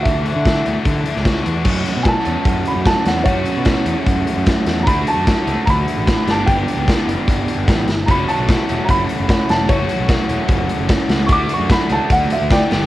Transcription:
<<
  \new Staff \with { instrumentName = "Upright piano" } { \time 4/4 \key fis \phrygian \tempo 4 = 149 e''2.~ e''8 r8 | r4 <gis'' a''>4. b''8 a''8 fis''8 | <cis'' fis''>2 r2 | <bes'' b''>8 a''4. <bes'' b''>4. a''8 |
g''4 r2. | <bes'' b''>8 a''4. <bes'' b''>4. a''8 | cis''4 r2. | <cis''' d'''>8 cis'''8 b''8 a''8 fis''8 e''8 <d'' g''>4 | }
  \new Staff \with { instrumentName = "Distorted electric guitar" } { \time 4/4 \key fis \phrygian <e d' fis'>8 fis'8 d'8 a8 e8 d'8 fis'8 d'8 | <a cis' fis'>1 | <a cis' fis'>1 | <a d' fis'>2.~ <a d' fis'>8 <b d' g'>8~ |
<b d' g'>2.~ <b d' g'>8 r8 | <a cis' fis'>1 | <a cis' fis'>1 | <a d' fis'>2.~ <a d' fis'>8 <b d' g'>8 | }
  \new Staff \with { instrumentName = "Overdriven electric guitar" } { \time 4/4 \key fis \phrygian r1 | <fis, cis fis a cis' fis'>4. <fis, cis fis a cis' fis'>2~ <fis, cis fis a cis' fis'>8 | <fis, cis fis a cis' fis'>4. <fis, cis fis a cis' fis'>2~ <fis, cis fis a cis' fis'>8 | <d a d' fis'>4. <d a d' fis'>2 <g, d g b d' g'>8~ |
<g, d g b d' g'>4 <g, d g b d' g'>2~ <g, d g b d' g'>8 r8 | <fis, cis fis a cis' fis'>4. <fis, cis fis a cis' fis'>2~ <fis, cis fis a cis' fis'>8 | <fis, cis fis a cis' fis'>4. <fis, cis fis a cis' fis'>2~ <fis, cis fis a cis' fis'>8 | <d a d' fis'>4. <d a d' fis'>2 <g, d g b d' g'>8 | }
  \new Staff \with { instrumentName = "Picked electric bass" } { \clef bass \time 4/4 \key fis \phrygian d,8. d8. d,16 r16 d8 r16 cis,8. e,8 | fis,8 r16 b,8 r16 e,16 r16 fis,8 r16 fis,8 r16 e,8 | fis,8 r16 b,8 r16 e,16 r16 fis,8 r16 fis,8 r16 e,8 | d,8 r16 fis,8 r16 cis,16 r16 d,8 r16 a,,8 r16 g,,8 |
g,,8 r16 cis,8 r16 fis,,16 r16 g,,8 r16 g,,16 a,,8 g,,8 | fis,,8 r16 b,,8 r16 e,,16 r16 fis,,8 r16 fis,,8 r16 e,,8 | fis,,8 r16 b,,8 r16 e,,16 r16 fis,,8 r16 fis,,8 r16 cis,8 | d,8 r16 fis,8 r16 cis,16 r16 d,8 r16 d,8 r16 g,,8 | }
  \new DrumStaff \with { instrumentName = "Drums" } \drummode { \time 4/4 <hh bd>8 hh8 <hh bd sn>8 hh8 <hh bd>8 hh16 sn16 <hh bd sn>16 sn16 hh8 | <cymc bd>8 hh8 <hh bd sn>8 hh8 <hh bd>8 hh8 <hh bd sn>8 <hh sn>16 sn16 | <hh bd>8 hh8 <hh bd sn>8 hh8 <hh bd>8 hh8 <hh bd sn>8 <hh sn>8 | <hh bd>8 hh8 <hh bd sn>8 hh8 <hh bd>8 hh8 <hh bd sn>8 <hh sn>8 |
<hh bd>8 hh8 <hh bd sn>8 hh8 <hh bd>8 hh8 <hh bd sn>8 <hh sn>8 | <hh bd>8 hh8 <hh bd sn>8 hh8 <hh bd>8 hh8 <hh bd sn>8 <hh sn>8 | <hh bd>8 hh8 <hh bd sn>8 hh8 <hh bd>8 hh8 <hh bd sn>8 <hh sn>16 sn16 | <hh bd>8 hh8 <hh bd sn>8 hh8 <hh bd>8 hh8 <hh bd sn>8 <hh sn>8 | }
>>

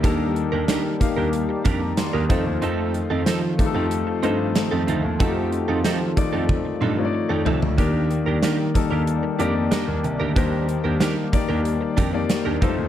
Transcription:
<<
  \new Staff \with { instrumentName = "Clean electric guitar" } { \time 4/4 \key ees \lydian \tempo 4 = 93 <d' g' bes'>8 r16 <d' g' bes'>16 <d' g' bes'>16 r8 <d' g' bes'>16 r8 <d' g' bes'>16 r8 <d' g' bes'>16 <c' ees' a'>16 r16 | <c' ees' a'>8 r16 <c' ees' a'>16 <c' ees' a'>16 r8 <c' ees' a'>16 r8 <c' ees' a'>16 r8 <c' ees' a'>16 <c' ees' a'>16 r16 | <c' ees' a'>8 r16 <c' ees' a'>16 <c' ees' a'>16 r8 <c' ees' a'>16 r8 <c' ees' a'>16 r8 <c' ees' a'>16 <c' ees' a'>16 r16 | <d' g' bes'>8 r16 <d' g' bes'>16 <d' g' bes'>16 r8 <d' g' bes'>16 r8 <d' g' bes'>16 r16 <d' g' bes'>16 r8 <d' g' bes'>16 |
<d' g' bes'>8 r16 <d' g' bes'>16 <d' g' bes'>16 r8 <d' g' bes'>16 r8 <d' g' bes'>16 r8 <d' g' bes'>16 <c' ees' a'>16 r16 | }
  \new Staff \with { instrumentName = "Grand piano" } { \time 4/4 \key ees \lydian << { ees4. r4 r16 bes''16 c'''16 ees'''8 r16 | r1 | r1 | ees4. r2 r8 |
ees4. r2 r8 | } \\ { <bes ees' g' a'>4 r8 <bes ees' g' f''>4 r4 <a ees' f' c''>8~ | <a ees' f' c''>4 r8 <a ees' f' g' a'>8. r16 <a ees' f' c''>4 r8 | <a ees' f' ges' g'>4 r8 <a ees' f' d''>4 r16 <a ees' f' des'' d''>4 r16 | <bes ees' g' d''>4 r8 <bes ees' g' a'>8. r16 <bes ees' g' d''>4 r8 |
<bes ees' g' c''>4 r8 <bes ees' g' d''>4 r16 <bes ees' g' d''>8. <g a ees' f' c''>8 | } >> }
  \new Staff \with { instrumentName = "Analog synth pad" } { \time 4/4 \key ees \lydian << { <g bes g' d''>2.~ <g bes g' d''>8 <f a c' f'>8~ | <f a c' f'>1~ | <f a c' f'>1 | <g bes g' d''>1~ |
<g bes g' d''>2.~ <g bes g' d''>8 <f a c' f'>8 | } \\ { ees1~ | ees1~ | ees1~ | ees1~ |
ees1 | } >> }
  \new Staff \with { instrumentName = "Grand piano" } { \clef bass \time 4/4 \key ees \lydian ees,8. ees,16 ees8 r16 ees,8 r16 f,8 r16 ees,16 f,16 ees,16 | f,8. f,16 f8 r16 f,8 r16 g,8 r16 f,16 d,16 ees,16 | f,8. f,16 f8 r16 f,8 r16 g,8 r16 f,16 c,16 d,16 | ees,8. ees,16 ees8 r16 ees,8 r16 f,8 r16 ees,16 c,16 d,16 |
ees,8. ees,16 ees8 r16 ees,8 r16 f,8 r16 ees,16 f,16 ees,16 | }
  \new DrumStaff \with { instrumentName = "Drums" } \drummode { \time 4/4 <hh bd>8 hh8 <hh sn>8 <hh bd>8 hh8 <hh bd>8 <hh sn>8 <hh bd>8 | hh8 hh8 <hh sn>8 <hh bd>8 hh8 hh8 <hh sn>8 hh8 | <hh bd>8 hh8 <hh sn>8 <hh bd>8 <bd tommh>8 toml8 r8 tomfh16 tomfh16 | <hh bd>8 hh8 <hh sn>8 <hh bd>8 hh8 hh8 <hh sn>8 hh8 |
<hh bd>8 hh8 <hh sn>8 <hh bd>8 hh8 <hh bd>8 <hh sn>8 <hh bd>8 | }
>>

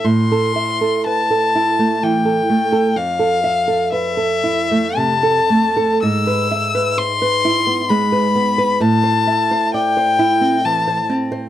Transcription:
<<
  \new Staff \with { instrumentName = "Violin" } { \time 3/4 \key a \minor \tempo 4 = 64 c'''4 a''4 g''4 | f''4 e''4 a''4 | e'''4 c'''4 b''4 | a''4 g''4 a''8 r8 | }
  \new Staff \with { instrumentName = "Nylon-string guitar" } { \time 3/4 \key a \minor a,16 a'16 e''16 a'16 b'16 a'16 e'16 a16 e16 a'16 a16 a'16 | f,16 a'16 e''16 a'16 b'16 a'16 e'16 a16 c16 a'16 a16 a'16 | gis,16 b'16 e''16 b'16 c''16 b'16 e'16 b16 gis16 b'16 b16 b'16 | a,16 c''16 e''16 c''16 d''16 c''16 e'16 c'16 e16 c''16 c'16 c''16 | }
>>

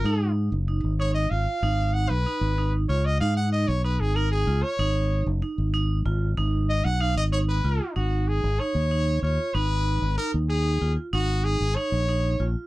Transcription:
<<
  \new Staff \with { instrumentName = "Trumpet" } { \time 5/8 \key gis \dorian \tempo 4 = 95 ais'8 r4 cis''16 dis''16 eis''8~ | eis''8 fis''16 b'4 r16 cis''16 dis''16 | eis''16 fis''16 dis''16 cis''16 b'16 gis'16 ais'16 gis'8 cis''16~ | cis''8. r4. r16 |
r8 dis''16 fis''16 eis''16 dis''16 cis''16 b'8. | fis'8 gis'8 cis''4 cis''8 | b'4 ais'8 gis'8. r16 | fis'8 gis'8 cis''4 r8 | }
  \new Staff \with { instrumentName = "Vibraphone" } { \time 5/8 \key gis \dorian dis'4 dis'8 dis'8 eis'8 | dis'4 dis'8 dis'8 eis'8 | dis'4 dis'8 dis'8 eis'8 | dis'4 dis'8 dis'8 eis'8 |
dis'4 dis'8 dis'8 eis'8 | dis'4 dis'8 dis'8 eis'8 | dis'4 dis'8 dis'8 eis'8 | dis'4 dis'8 dis'8 eis'8 | }
  \new Staff \with { instrumentName = "Fingered electric bass" } { \clef bass \time 5/8 \key gis \dorian gis,8. fis,,8 gis,,8. gis,,16 r16 | gis,,8. b,,16 r16 gis,,8. cis,8 | gis,8. b,,8 gis,,8. cis,16 r16 | gis,,8. fis,,16 r16 gis,,8. gis,,8 |
gis,,8. b,,8 gis,,8. cis,16 r16 | gis,,8. gis,,16 r16 dis,8. dis,16 r16 | gis,,8. gis,,16 r16 dis,8. dis,16 r16 | gis,,8. gis,,16 r16 ais,,8. ais,,16 r16 | }
>>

